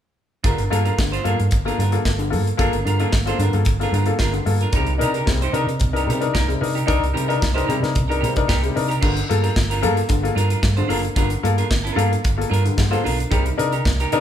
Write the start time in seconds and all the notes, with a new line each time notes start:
0.44 G1 G2 D3 D4 F4 A#4, kick, closed hi-hat
0.58 G1, closed hi-hat
0.70 G2 A#3 D4 F4 A4 A#4, closed hi-hat
0.85 D4 F4 A4 A#4, closed hi-hat
0.98 G1 G2 D3, muted clean electric guitar stroke, kick, snare
1.12 D4 F4 C5, closed hi-hat
1.24 G2 A#3 D4 F4 A4 A#4, closed hi-hat
1.38 G2 F4 A4, muted clean electric guitar stroke, closed hi-hat
1.51 G1, muted clean electric guitar stroke, kick, closed hi-hat
1.65 A#3 D4 F4 A4 A#4, closed hi-hat
1.78 G2 D3 D4 F4 A#4, closed hi-hat
1.92 A#3 F4 A4, muted clean electric guitar stroke, closed hi-hat
2.05 G1 F4 A4, muted clean electric guitar stroke, kick, snare
2.18 G2 D3, muted clean electric guitar stroke, closed hi-hat
2.30 G2 A#3 F4 A4, open hi-hat
2.47 muted clean electric guitar stroke, closed hi-hat
2.57 G1 A#3 D4 F4 A4 A#4, kick, closed hi-hat
2.73 G1, closed hi-hat
2.85 G2 D3 D4 F4 A#4, closed hi-hat
2.99 A#3 D4 F4 A4 A#4, closed hi-hat
3.13 G1, muted clean electric guitar stroke, kick, snare
3.26 A#3 D4 F4 A4 C5, closed hi-hat
3.39 G2 D3 D4 F4, closed hi-hat
3.43 A#4
3.53 G2 A#3 F4 A4, muted clean electric guitar stroke, closed hi-hat
3.65 G1, muted clean electric guitar stroke, kick, closed hi-hat
3.80 A#3 D4 F4 A4 A#4, closed hi-hat
3.92 G2 D3 D4 F4, closed hi-hat
3.96 A#4
4.06 A#3 F4 A4, muted clean electric guitar stroke, closed hi-hat
4.19 G1 D4 F4 A4 A#4, kick, snare
4.33 G2 D3, muted clean electric guitar stroke, closed hi-hat
4.46 G2 A#3 F4 A4, muted clean electric guitar stroke, open hi-hat
4.61 D4 F4 A#4, closed hi-hat
4.73 C2 C3 G3 D#4 G4 A#4, kick, closed hi-hat
4.86 C2, closed hi-hat
4.98 C3 D4 D#4 A#4, closed hi-hat
5.02 G4 A#4
5.14 D#4 G4 A#4, closed hi-hat
5.26 C2 C3 G3, muted clean electric guitar stroke, kick, snare
5.42 D#4 G4 C5, closed hi-hat
5.53 C3 D4 D#4 G4 A#4, closed hi-hat
5.67 C3 D#4 A#4, muted clean electric guitar stroke, closed hi-hat
5.80 C2, muted clean electric guitar stroke, kick, closed hi-hat
5.93 D4 D#4 G4 A#4, closed hi-hat
5.98 D#4
6.06 C3 G3 D#4 G4, closed hi-hat
6.11 A#4
6.21 D4 D#4 A#4, muted clean electric guitar stroke, closed hi-hat
6.33 C2 D#4 G4 A#4, kick, snare
6.48 C3 G3, muted clean electric guitar stroke, closed hi-hat
6.61 C3 D4 D#4 A#4, muted clean electric guitar stroke, open hi-hat
6.74 D#4 G4 A#4, closed hi-hat
6.86 C2 D4 D#4 G4 A#4, kick, closed hi-hat
7.02 C2, closed hi-hat
7.13 C3 G3 D#4 G4 A#4, closed hi-hat
7.28 D4 D#4 G4 A#4, closed hi-hat
7.40 C2, muted clean electric guitar stroke, kick, snare
7.54 D4 D#4 G4 A#4 C5, closed hi-hat
7.66 C3 G3 D#4 G4 A#4, closed hi-hat
7.80 C3 D4 D#4 A#4, muted clean electric guitar stroke, closed hi-hat
7.84 snare
7.94 C2, muted clean electric guitar stroke, kick, closed hi-hat
8.08 D4 D#4 G4 A#4, closed hi-hat
8.20 C3 G3 D#4 G4 A#4
8.24 closed hi-hat
8.34 D4 D#4 A#4, muted clean electric guitar stroke, kick, closed hi-hat
8.48 C2 D#4 G4 A#4, kick, snare
8.62 C3 G3, muted clean electric guitar stroke, closed hi-hat
8.74 C3 D4 D#4 A#4, muted clean electric guitar stroke, open hi-hat
8.88 D#4 G4 A#4, closed hi-hat
9.01 G1 G2 D3 D4 F4 A#4, kick, crash
9.15 muted clean electric guitar stroke, closed hi-hat
9.29 G2 A#3 F4 A4, muted clean electric guitar stroke, closed hi-hat
9.42 D4 F4 A4 A#4, closed hi-hat
9.56 G1, muted clean electric guitar stroke, kick, snare
9.70 D4 F4 A#4, closed hi-hat
9.81 G2 A#3 D4 F4 A4 A#4, closed hi-hat
9.97 muted clean electric guitar stroke, closed hi-hat
10.09 G1 G2 D3, muted clean electric guitar stroke, kick, closed hi-hat
10.23 A#3 F4 A4, muted clean electric guitar stroke, closed hi-hat
10.35 G2 D4 F4 A4 A#4, closed hi-hat
10.50 D4 F4 A#4, closed hi-hat
10.63 G2 F4 A4, muted clean electric guitar stroke, kick, snare
10.77 G2 D3 D4 F4 C5, closed hi-hat
10.88 F#1 A#3 D4 F4 A4 A#4, open hi-hat
11.03 muted clean electric guitar stroke, closed hi-hat
11.16 G1 G2 D3 D4 F4 A#4, kick, closed hi-hat
11.30 muted clean electric guitar stroke, closed hi-hat
11.43 G2 A#3 F4 A4, muted clean electric guitar stroke, closed hi-hat
11.57 D4 F4 A4 A#4, closed hi-hat
11.70 G1, muted clean electric guitar stroke, kick, snare
11.84 D4 F4 A#4, closed hi-hat
11.95 G2 A#3 D4 F4 A4 A#4, closed hi-hat
12.11 muted clean electric guitar stroke, closed hi-hat
12.24 G1, muted clean electric guitar stroke, kick, closed hi-hat
12.37 A#3 F4 A4, muted clean electric guitar stroke
12.41 closed hi-hat
12.50 G2 D4 F4 A#4, closed hi-hat
12.65 G2 D3, muted clean electric guitar stroke, closed hi-hat
12.77 G2 D3, muted clean electric guitar stroke, kick, snare
12.91 A#3 D4 F4 A4 C5, closed hi-hat
13.04 B1 D4 F4 A4 A#4, open hi-hat
13.19 muted clean electric guitar stroke, closed hi-hat
13.31 C2 C3 G3 D#4 G4 A#4, kick, closed hi-hat
13.45 muted clean electric guitar stroke, closed hi-hat
13.57 C3 D4 D#4 A#4, muted clean electric guitar stroke, closed hi-hat
13.72 D#4 G4 A#4, closed hi-hat
13.85 C2, muted clean electric guitar stroke, kick, snare
14.00 D#4 G4 A#4, closed hi-hat
14.12 C3 D4 D#4 G4 A#4, closed hi-hat